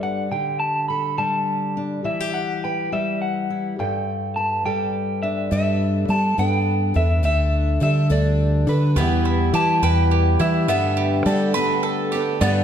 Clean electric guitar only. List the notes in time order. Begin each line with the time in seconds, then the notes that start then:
0.03 F#5
0.32 G5
0.60 A5
0.88 B5
1.18 A5
2.05 E5
2.34 F#5
2.64 G5
2.93 E5
3.22 F#5
3.80 G5
4.36 A5
4.66 G5
5.23 E5
5.53 E5
6.10 A5
6.39 G5
6.96 E5
7.25 E5
7.83 E5
8.12 D5
8.69 B4
8.98 B4
9.55 A5
9.84 G5
10.41 E5
10.69 E5
11.26 D5
12.41 D5